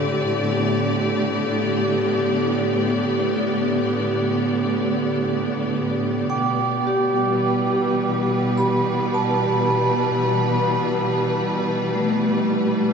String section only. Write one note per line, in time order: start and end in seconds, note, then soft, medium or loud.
0.00 6.29 A2 medium
0.00 6.30 D3 medium
0.00 0.59 C4 medium
0.00 8.47 G4 medium
0.00 7.56 D5 medium
0.27 9.03 B3 medium
6.32 12.93 B2 medium
7.12 12.93 G3 medium
7.26 12.93 E3 medium
7.32 12.93 B4 medium